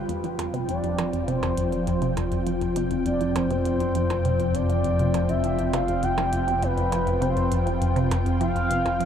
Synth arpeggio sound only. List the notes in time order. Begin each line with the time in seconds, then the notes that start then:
0.09 F2
0.24 F3
0.38 F2
0.53 C3
0.68 F2
0.83 F2
0.98 F3
1.13 F2
1.28 C3
1.42 F2
1.57 F2
1.72 F3
1.87 F2
2.02 C3
2.17 F2
2.32 F2
2.46 F3
2.61 F2
2.76 C3
2.91 F2
3.06 F2
3.21 F3
3.36 F2
3.51 C3
3.66 F2
3.81 F2
3.95 F3
4.10 F2
4.25 C3
4.40 F2
4.55 F2
4.70 F3
4.84 F2
5.00 C3
5.14 F2
5.29 F2
5.44 F3
5.59 F2
5.74 C3
5.88 F2
6.03 F2
6.18 F3
6.33 F2
6.48 C3
6.63 F2
6.77 F2
6.92 F3
7.07 F2
7.22 C3
7.37 F2
7.52 F2
7.66 F3
7.81 F2
7.96 C3
8.11 F2
8.26 F2
8.41 F3
8.56 F2
8.71 C3
8.85 F2
9.00 F3